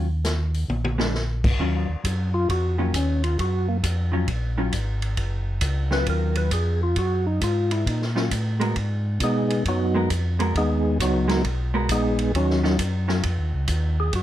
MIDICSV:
0, 0, Header, 1, 5, 480
1, 0, Start_track
1, 0, Key_signature, -6, "minor"
1, 0, Tempo, 448096
1, 1698, Time_signature, 4, 2, 24, 8
1, 15240, End_track
2, 0, Start_track
2, 0, Title_t, "Tonewheel organ"
2, 0, Program_c, 0, 16
2, 2509, Note_on_c, 0, 65, 83
2, 2662, Note_off_c, 0, 65, 0
2, 2684, Note_on_c, 0, 66, 90
2, 2978, Note_off_c, 0, 66, 0
2, 2993, Note_on_c, 0, 58, 53
2, 3145, Note_off_c, 0, 58, 0
2, 3167, Note_on_c, 0, 61, 68
2, 3460, Note_off_c, 0, 61, 0
2, 3467, Note_on_c, 0, 65, 79
2, 3622, Note_off_c, 0, 65, 0
2, 3646, Note_on_c, 0, 66, 70
2, 3940, Note_off_c, 0, 66, 0
2, 3949, Note_on_c, 0, 58, 77
2, 4044, Note_off_c, 0, 58, 0
2, 6350, Note_on_c, 0, 71, 81
2, 6504, Note_off_c, 0, 71, 0
2, 6530, Note_on_c, 0, 70, 78
2, 6822, Note_off_c, 0, 70, 0
2, 6828, Note_on_c, 0, 71, 84
2, 6983, Note_off_c, 0, 71, 0
2, 6998, Note_on_c, 0, 68, 71
2, 7296, Note_off_c, 0, 68, 0
2, 7318, Note_on_c, 0, 65, 77
2, 7468, Note_off_c, 0, 65, 0
2, 7483, Note_on_c, 0, 66, 83
2, 7779, Note_off_c, 0, 66, 0
2, 7785, Note_on_c, 0, 63, 73
2, 7941, Note_off_c, 0, 63, 0
2, 7967, Note_on_c, 0, 65, 77
2, 8261, Note_off_c, 0, 65, 0
2, 8268, Note_on_c, 0, 64, 80
2, 8423, Note_off_c, 0, 64, 0
2, 8444, Note_on_c, 0, 63, 70
2, 8626, Note_off_c, 0, 63, 0
2, 9893, Note_on_c, 0, 63, 62
2, 9894, Note_on_c, 0, 68, 84
2, 9896, Note_on_c, 0, 59, 59
2, 9897, Note_on_c, 0, 56, 61
2, 10325, Note_off_c, 0, 63, 0
2, 10325, Note_off_c, 0, 68, 0
2, 10326, Note_off_c, 0, 56, 0
2, 10326, Note_off_c, 0, 59, 0
2, 10372, Note_on_c, 0, 66, 69
2, 10374, Note_on_c, 0, 59, 54
2, 10375, Note_on_c, 0, 63, 56
2, 10378, Note_on_c, 0, 54, 58
2, 10804, Note_off_c, 0, 66, 0
2, 10805, Note_off_c, 0, 59, 0
2, 10805, Note_off_c, 0, 63, 0
2, 10807, Note_off_c, 0, 54, 0
2, 11327, Note_on_c, 0, 68, 76
2, 11330, Note_on_c, 0, 63, 67
2, 11332, Note_on_c, 0, 56, 73
2, 11332, Note_on_c, 0, 59, 65
2, 11760, Note_off_c, 0, 68, 0
2, 11762, Note_off_c, 0, 63, 0
2, 11763, Note_off_c, 0, 56, 0
2, 11763, Note_off_c, 0, 59, 0
2, 11802, Note_on_c, 0, 66, 76
2, 11804, Note_on_c, 0, 54, 62
2, 11805, Note_on_c, 0, 63, 61
2, 11807, Note_on_c, 0, 59, 66
2, 12237, Note_off_c, 0, 66, 0
2, 12238, Note_off_c, 0, 54, 0
2, 12239, Note_off_c, 0, 63, 0
2, 12240, Note_off_c, 0, 59, 0
2, 12764, Note_on_c, 0, 59, 70
2, 12766, Note_on_c, 0, 56, 65
2, 12767, Note_on_c, 0, 68, 79
2, 12769, Note_on_c, 0, 63, 69
2, 13198, Note_off_c, 0, 59, 0
2, 13199, Note_off_c, 0, 56, 0
2, 13199, Note_off_c, 0, 68, 0
2, 13201, Note_off_c, 0, 63, 0
2, 13235, Note_on_c, 0, 66, 63
2, 13239, Note_on_c, 0, 61, 59
2, 13241, Note_on_c, 0, 54, 54
2, 13245, Note_on_c, 0, 63, 55
2, 13673, Note_off_c, 0, 66, 0
2, 13675, Note_off_c, 0, 61, 0
2, 13676, Note_off_c, 0, 54, 0
2, 13678, Note_off_c, 0, 63, 0
2, 14996, Note_on_c, 0, 68, 73
2, 15142, Note_off_c, 0, 68, 0
2, 15164, Note_on_c, 0, 66, 72
2, 15240, Note_off_c, 0, 66, 0
2, 15240, End_track
3, 0, Start_track
3, 0, Title_t, "Hollow-body jazz guitar"
3, 0, Program_c, 1, 26
3, 1052, Note_on_c, 1, 56, 50
3, 1056, Note_on_c, 1, 59, 68
3, 1066, Note_on_c, 1, 62, 65
3, 1200, Note_off_c, 1, 56, 0
3, 1203, Note_off_c, 1, 59, 0
3, 1207, Note_off_c, 1, 62, 0
3, 1709, Note_on_c, 1, 51, 47
3, 1716, Note_on_c, 1, 54, 61
3, 1720, Note_on_c, 1, 61, 64
3, 1720, Note_on_c, 1, 65, 62
3, 1987, Note_off_c, 1, 51, 0
3, 1991, Note_off_c, 1, 54, 0
3, 1993, Note_off_c, 1, 61, 0
3, 1993, Note_off_c, 1, 65, 0
3, 2982, Note_on_c, 1, 51, 69
3, 2989, Note_on_c, 1, 61, 72
3, 2990, Note_on_c, 1, 54, 72
3, 2999, Note_on_c, 1, 65, 69
3, 3127, Note_off_c, 1, 51, 0
3, 3131, Note_off_c, 1, 54, 0
3, 3131, Note_off_c, 1, 61, 0
3, 3136, Note_off_c, 1, 65, 0
3, 4411, Note_on_c, 1, 51, 53
3, 4425, Note_on_c, 1, 54, 64
3, 4427, Note_on_c, 1, 65, 62
3, 4430, Note_on_c, 1, 61, 66
3, 4563, Note_off_c, 1, 51, 0
3, 4570, Note_off_c, 1, 54, 0
3, 4571, Note_off_c, 1, 65, 0
3, 4572, Note_off_c, 1, 61, 0
3, 4902, Note_on_c, 1, 51, 57
3, 4906, Note_on_c, 1, 54, 64
3, 4908, Note_on_c, 1, 61, 59
3, 4916, Note_on_c, 1, 65, 64
3, 5048, Note_off_c, 1, 51, 0
3, 5050, Note_off_c, 1, 54, 0
3, 5051, Note_off_c, 1, 61, 0
3, 5055, Note_off_c, 1, 65, 0
3, 6329, Note_on_c, 1, 51, 58
3, 6339, Note_on_c, 1, 61, 63
3, 6340, Note_on_c, 1, 54, 53
3, 6342, Note_on_c, 1, 65, 65
3, 6945, Note_off_c, 1, 51, 0
3, 6951, Note_off_c, 1, 54, 0
3, 6951, Note_off_c, 1, 61, 0
3, 6952, Note_off_c, 1, 65, 0
3, 8737, Note_on_c, 1, 51, 55
3, 8742, Note_on_c, 1, 54, 55
3, 8747, Note_on_c, 1, 61, 62
3, 8749, Note_on_c, 1, 65, 67
3, 8885, Note_off_c, 1, 51, 0
3, 8888, Note_off_c, 1, 54, 0
3, 8891, Note_off_c, 1, 61, 0
3, 8891, Note_off_c, 1, 65, 0
3, 9209, Note_on_c, 1, 56, 67
3, 9217, Note_on_c, 1, 59, 63
3, 9219, Note_on_c, 1, 66, 75
3, 9224, Note_on_c, 1, 70, 67
3, 9362, Note_off_c, 1, 56, 0
3, 9365, Note_off_c, 1, 59, 0
3, 9367, Note_off_c, 1, 66, 0
3, 9369, Note_off_c, 1, 70, 0
3, 10653, Note_on_c, 1, 56, 61
3, 10660, Note_on_c, 1, 59, 61
3, 10662, Note_on_c, 1, 66, 62
3, 10669, Note_on_c, 1, 70, 69
3, 10803, Note_off_c, 1, 56, 0
3, 10806, Note_off_c, 1, 59, 0
3, 10807, Note_off_c, 1, 66, 0
3, 10811, Note_off_c, 1, 70, 0
3, 11133, Note_on_c, 1, 56, 63
3, 11137, Note_on_c, 1, 59, 70
3, 11143, Note_on_c, 1, 66, 67
3, 11147, Note_on_c, 1, 70, 77
3, 11282, Note_off_c, 1, 56, 0
3, 11284, Note_off_c, 1, 59, 0
3, 11287, Note_off_c, 1, 66, 0
3, 11290, Note_off_c, 1, 70, 0
3, 12081, Note_on_c, 1, 56, 64
3, 12085, Note_on_c, 1, 59, 60
3, 12088, Note_on_c, 1, 66, 65
3, 12094, Note_on_c, 1, 70, 63
3, 12236, Note_off_c, 1, 56, 0
3, 12238, Note_off_c, 1, 59, 0
3, 12239, Note_off_c, 1, 66, 0
3, 12242, Note_off_c, 1, 70, 0
3, 12574, Note_on_c, 1, 56, 65
3, 12576, Note_on_c, 1, 59, 71
3, 12583, Note_on_c, 1, 66, 70
3, 12584, Note_on_c, 1, 70, 70
3, 12722, Note_off_c, 1, 56, 0
3, 12723, Note_off_c, 1, 59, 0
3, 12726, Note_off_c, 1, 66, 0
3, 12727, Note_off_c, 1, 70, 0
3, 13534, Note_on_c, 1, 51, 67
3, 13537, Note_on_c, 1, 54, 76
3, 13542, Note_on_c, 1, 61, 71
3, 13545, Note_on_c, 1, 65, 84
3, 13681, Note_off_c, 1, 51, 0
3, 13683, Note_off_c, 1, 54, 0
3, 13685, Note_off_c, 1, 61, 0
3, 13687, Note_off_c, 1, 65, 0
3, 14010, Note_on_c, 1, 51, 63
3, 14014, Note_on_c, 1, 54, 70
3, 14018, Note_on_c, 1, 61, 65
3, 14025, Note_on_c, 1, 65, 64
3, 14159, Note_off_c, 1, 51, 0
3, 14161, Note_off_c, 1, 54, 0
3, 14163, Note_off_c, 1, 61, 0
3, 14166, Note_off_c, 1, 65, 0
3, 15240, End_track
4, 0, Start_track
4, 0, Title_t, "Tonewheel organ"
4, 0, Program_c, 2, 16
4, 0, Note_on_c, 2, 39, 75
4, 698, Note_off_c, 2, 39, 0
4, 734, Note_on_c, 2, 34, 75
4, 1654, Note_off_c, 2, 34, 0
4, 1712, Note_on_c, 2, 39, 79
4, 1999, Note_off_c, 2, 39, 0
4, 2018, Note_on_c, 2, 39, 37
4, 2100, Note_off_c, 2, 39, 0
4, 2183, Note_on_c, 2, 42, 78
4, 2647, Note_off_c, 2, 42, 0
4, 2670, Note_on_c, 2, 41, 77
4, 3131, Note_off_c, 2, 41, 0
4, 3149, Note_on_c, 2, 39, 80
4, 3611, Note_off_c, 2, 39, 0
4, 3631, Note_on_c, 2, 42, 79
4, 4092, Note_off_c, 2, 42, 0
4, 4106, Note_on_c, 2, 41, 84
4, 4570, Note_off_c, 2, 41, 0
4, 4585, Note_on_c, 2, 34, 80
4, 5049, Note_off_c, 2, 34, 0
4, 5065, Note_on_c, 2, 32, 80
4, 5530, Note_off_c, 2, 32, 0
4, 5545, Note_on_c, 2, 30, 81
4, 6009, Note_off_c, 2, 30, 0
4, 6014, Note_on_c, 2, 37, 91
4, 6484, Note_off_c, 2, 37, 0
4, 6499, Note_on_c, 2, 39, 82
4, 6967, Note_off_c, 2, 39, 0
4, 6978, Note_on_c, 2, 41, 84
4, 7446, Note_off_c, 2, 41, 0
4, 7462, Note_on_c, 2, 42, 75
4, 7928, Note_off_c, 2, 42, 0
4, 7944, Note_on_c, 2, 44, 82
4, 8409, Note_off_c, 2, 44, 0
4, 8419, Note_on_c, 2, 46, 77
4, 8886, Note_off_c, 2, 46, 0
4, 8901, Note_on_c, 2, 45, 82
4, 9367, Note_off_c, 2, 45, 0
4, 9381, Note_on_c, 2, 44, 77
4, 9847, Note_off_c, 2, 44, 0
4, 9854, Note_on_c, 2, 47, 82
4, 10323, Note_off_c, 2, 47, 0
4, 10342, Note_on_c, 2, 42, 75
4, 10807, Note_off_c, 2, 42, 0
4, 10818, Note_on_c, 2, 41, 86
4, 11284, Note_off_c, 2, 41, 0
4, 11299, Note_on_c, 2, 39, 71
4, 11765, Note_off_c, 2, 39, 0
4, 11779, Note_on_c, 2, 37, 83
4, 12244, Note_off_c, 2, 37, 0
4, 12259, Note_on_c, 2, 35, 84
4, 12724, Note_off_c, 2, 35, 0
4, 12736, Note_on_c, 2, 34, 83
4, 13202, Note_off_c, 2, 34, 0
4, 13219, Note_on_c, 2, 39, 83
4, 13683, Note_off_c, 2, 39, 0
4, 13695, Note_on_c, 2, 42, 89
4, 14161, Note_off_c, 2, 42, 0
4, 14180, Note_on_c, 2, 41, 84
4, 14333, Note_off_c, 2, 41, 0
4, 14333, Note_on_c, 2, 39, 64
4, 14494, Note_off_c, 2, 39, 0
4, 14499, Note_on_c, 2, 37, 58
4, 14646, Note_off_c, 2, 37, 0
4, 14656, Note_on_c, 2, 39, 90
4, 15120, Note_off_c, 2, 39, 0
4, 15139, Note_on_c, 2, 42, 74
4, 15240, Note_off_c, 2, 42, 0
4, 15240, End_track
5, 0, Start_track
5, 0, Title_t, "Drums"
5, 263, Note_on_c, 9, 38, 65
5, 263, Note_on_c, 9, 42, 50
5, 371, Note_off_c, 9, 38, 0
5, 371, Note_off_c, 9, 42, 0
5, 582, Note_on_c, 9, 46, 37
5, 689, Note_off_c, 9, 46, 0
5, 745, Note_on_c, 9, 48, 39
5, 853, Note_off_c, 9, 48, 0
5, 906, Note_on_c, 9, 48, 53
5, 1013, Note_off_c, 9, 48, 0
5, 1065, Note_on_c, 9, 38, 77
5, 1173, Note_off_c, 9, 38, 0
5, 1226, Note_on_c, 9, 38, 46
5, 1333, Note_off_c, 9, 38, 0
5, 1545, Note_on_c, 9, 36, 75
5, 1545, Note_on_c, 9, 49, 71
5, 1652, Note_off_c, 9, 36, 0
5, 1652, Note_off_c, 9, 49, 0
5, 1710, Note_on_c, 9, 36, 20
5, 1817, Note_off_c, 9, 36, 0
5, 2189, Note_on_c, 9, 36, 21
5, 2192, Note_on_c, 9, 44, 61
5, 2192, Note_on_c, 9, 51, 63
5, 2297, Note_off_c, 9, 36, 0
5, 2299, Note_off_c, 9, 44, 0
5, 2299, Note_off_c, 9, 51, 0
5, 2670, Note_on_c, 9, 36, 20
5, 2674, Note_on_c, 9, 51, 56
5, 2777, Note_off_c, 9, 36, 0
5, 2781, Note_off_c, 9, 51, 0
5, 3149, Note_on_c, 9, 36, 16
5, 3149, Note_on_c, 9, 44, 49
5, 3149, Note_on_c, 9, 51, 67
5, 3256, Note_off_c, 9, 44, 0
5, 3256, Note_off_c, 9, 51, 0
5, 3257, Note_off_c, 9, 36, 0
5, 3468, Note_on_c, 9, 51, 43
5, 3575, Note_off_c, 9, 51, 0
5, 3629, Note_on_c, 9, 36, 18
5, 3632, Note_on_c, 9, 51, 49
5, 3736, Note_off_c, 9, 36, 0
5, 3739, Note_off_c, 9, 51, 0
5, 4108, Note_on_c, 9, 36, 23
5, 4109, Note_on_c, 9, 44, 55
5, 4109, Note_on_c, 9, 51, 65
5, 4215, Note_off_c, 9, 36, 0
5, 4216, Note_off_c, 9, 44, 0
5, 4216, Note_off_c, 9, 51, 0
5, 4582, Note_on_c, 9, 51, 54
5, 4585, Note_on_c, 9, 36, 21
5, 4689, Note_off_c, 9, 51, 0
5, 4692, Note_off_c, 9, 36, 0
5, 5062, Note_on_c, 9, 44, 54
5, 5062, Note_on_c, 9, 51, 61
5, 5065, Note_on_c, 9, 36, 17
5, 5169, Note_off_c, 9, 44, 0
5, 5169, Note_off_c, 9, 51, 0
5, 5172, Note_off_c, 9, 36, 0
5, 5378, Note_on_c, 9, 51, 47
5, 5486, Note_off_c, 9, 51, 0
5, 5539, Note_on_c, 9, 51, 56
5, 5541, Note_on_c, 9, 36, 21
5, 5647, Note_off_c, 9, 51, 0
5, 5648, Note_off_c, 9, 36, 0
5, 6009, Note_on_c, 9, 44, 48
5, 6009, Note_on_c, 9, 51, 73
5, 6018, Note_on_c, 9, 36, 19
5, 6116, Note_off_c, 9, 44, 0
5, 6116, Note_off_c, 9, 51, 0
5, 6125, Note_off_c, 9, 36, 0
5, 6330, Note_on_c, 9, 38, 43
5, 6437, Note_off_c, 9, 38, 0
5, 6497, Note_on_c, 9, 51, 54
5, 6498, Note_on_c, 9, 36, 22
5, 6604, Note_off_c, 9, 51, 0
5, 6605, Note_off_c, 9, 36, 0
5, 6807, Note_on_c, 9, 51, 47
5, 6914, Note_off_c, 9, 51, 0
5, 6975, Note_on_c, 9, 44, 47
5, 6975, Note_on_c, 9, 51, 65
5, 6979, Note_on_c, 9, 36, 16
5, 7082, Note_off_c, 9, 44, 0
5, 7082, Note_off_c, 9, 51, 0
5, 7086, Note_off_c, 9, 36, 0
5, 7455, Note_on_c, 9, 51, 55
5, 7459, Note_on_c, 9, 36, 23
5, 7563, Note_off_c, 9, 51, 0
5, 7566, Note_off_c, 9, 36, 0
5, 7942, Note_on_c, 9, 36, 21
5, 7942, Note_on_c, 9, 44, 52
5, 7942, Note_on_c, 9, 51, 67
5, 8049, Note_off_c, 9, 36, 0
5, 8049, Note_off_c, 9, 44, 0
5, 8049, Note_off_c, 9, 51, 0
5, 8259, Note_on_c, 9, 51, 51
5, 8366, Note_off_c, 9, 51, 0
5, 8425, Note_on_c, 9, 36, 24
5, 8431, Note_on_c, 9, 51, 59
5, 8532, Note_off_c, 9, 36, 0
5, 8538, Note_off_c, 9, 51, 0
5, 8589, Note_on_c, 9, 38, 26
5, 8696, Note_off_c, 9, 38, 0
5, 8744, Note_on_c, 9, 38, 45
5, 8851, Note_off_c, 9, 38, 0
5, 8903, Note_on_c, 9, 36, 22
5, 8904, Note_on_c, 9, 44, 48
5, 8904, Note_on_c, 9, 51, 72
5, 9010, Note_off_c, 9, 36, 0
5, 9011, Note_off_c, 9, 44, 0
5, 9011, Note_off_c, 9, 51, 0
5, 9225, Note_on_c, 9, 51, 46
5, 9332, Note_off_c, 9, 51, 0
5, 9382, Note_on_c, 9, 51, 51
5, 9383, Note_on_c, 9, 36, 21
5, 9489, Note_off_c, 9, 51, 0
5, 9490, Note_off_c, 9, 36, 0
5, 9857, Note_on_c, 9, 44, 53
5, 9857, Note_on_c, 9, 51, 68
5, 9860, Note_on_c, 9, 36, 23
5, 9965, Note_off_c, 9, 44, 0
5, 9965, Note_off_c, 9, 51, 0
5, 9967, Note_off_c, 9, 36, 0
5, 10180, Note_on_c, 9, 51, 50
5, 10288, Note_off_c, 9, 51, 0
5, 10341, Note_on_c, 9, 36, 20
5, 10342, Note_on_c, 9, 51, 56
5, 10448, Note_off_c, 9, 36, 0
5, 10449, Note_off_c, 9, 51, 0
5, 10821, Note_on_c, 9, 36, 18
5, 10821, Note_on_c, 9, 44, 58
5, 10821, Note_on_c, 9, 51, 64
5, 10928, Note_off_c, 9, 36, 0
5, 10928, Note_off_c, 9, 44, 0
5, 10928, Note_off_c, 9, 51, 0
5, 11139, Note_on_c, 9, 51, 50
5, 11246, Note_off_c, 9, 51, 0
5, 11302, Note_on_c, 9, 36, 21
5, 11306, Note_on_c, 9, 51, 54
5, 11409, Note_off_c, 9, 36, 0
5, 11414, Note_off_c, 9, 51, 0
5, 11781, Note_on_c, 9, 36, 25
5, 11786, Note_on_c, 9, 44, 68
5, 11786, Note_on_c, 9, 51, 74
5, 11888, Note_off_c, 9, 36, 0
5, 11893, Note_off_c, 9, 44, 0
5, 11893, Note_off_c, 9, 51, 0
5, 12098, Note_on_c, 9, 38, 45
5, 12098, Note_on_c, 9, 51, 48
5, 12205, Note_off_c, 9, 38, 0
5, 12205, Note_off_c, 9, 51, 0
5, 12259, Note_on_c, 9, 36, 20
5, 12260, Note_on_c, 9, 51, 57
5, 12366, Note_off_c, 9, 36, 0
5, 12368, Note_off_c, 9, 51, 0
5, 12737, Note_on_c, 9, 44, 59
5, 12737, Note_on_c, 9, 51, 72
5, 12739, Note_on_c, 9, 36, 21
5, 12844, Note_off_c, 9, 44, 0
5, 12844, Note_off_c, 9, 51, 0
5, 12847, Note_off_c, 9, 36, 0
5, 13054, Note_on_c, 9, 51, 49
5, 13161, Note_off_c, 9, 51, 0
5, 13221, Note_on_c, 9, 36, 17
5, 13227, Note_on_c, 9, 51, 56
5, 13328, Note_off_c, 9, 36, 0
5, 13334, Note_off_c, 9, 51, 0
5, 13391, Note_on_c, 9, 38, 30
5, 13498, Note_off_c, 9, 38, 0
5, 13541, Note_on_c, 9, 38, 44
5, 13648, Note_off_c, 9, 38, 0
5, 13699, Note_on_c, 9, 36, 23
5, 13699, Note_on_c, 9, 44, 64
5, 13699, Note_on_c, 9, 51, 72
5, 13806, Note_off_c, 9, 36, 0
5, 13806, Note_off_c, 9, 44, 0
5, 13806, Note_off_c, 9, 51, 0
5, 14016, Note_on_c, 9, 38, 47
5, 14123, Note_off_c, 9, 38, 0
5, 14177, Note_on_c, 9, 51, 65
5, 14180, Note_on_c, 9, 36, 22
5, 14284, Note_off_c, 9, 51, 0
5, 14287, Note_off_c, 9, 36, 0
5, 14649, Note_on_c, 9, 44, 50
5, 14649, Note_on_c, 9, 51, 66
5, 14657, Note_on_c, 9, 36, 25
5, 14757, Note_off_c, 9, 44, 0
5, 14757, Note_off_c, 9, 51, 0
5, 14764, Note_off_c, 9, 36, 0
5, 15134, Note_on_c, 9, 51, 55
5, 15137, Note_on_c, 9, 36, 21
5, 15240, Note_off_c, 9, 36, 0
5, 15240, Note_off_c, 9, 51, 0
5, 15240, End_track
0, 0, End_of_file